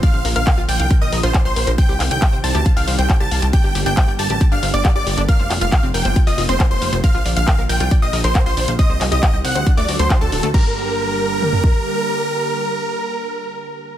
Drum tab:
CC |----------------|----------------|----------------|----------------|
HH |x-oxx-oxx-oxx-ox|x-oxx-oxxooxx-ox|x-oxx-oxx-oxx-ox|x-oxx-oxxooxx-ox|
CP |----x-------x---|--x-x-------x---|----x-------x---|--x-x-------x---|
T2 |----------------|----------------|----------------|----------------|
FT |----------------|----------------|----------------|----------------|
BD |o---o---o---o---|o---o---o---o---|o---o---o---o---|o---o---o---o---|

CC |----------------|----------------|x---------------|----------------|
HH |x-oxx-oxx-oxx-ox|x-oxx-oxxooxx-ox|----------------|----------------|
CP |----x-------x---|--x-x-------x---|----------------|----------------|
T2 |----------------|----------------|--------o-------|----------------|
FT |----------------|----------------|---------o------|----------------|
BD |o---o---o---o---|o---o---o---o---|o---------o-----|----------------|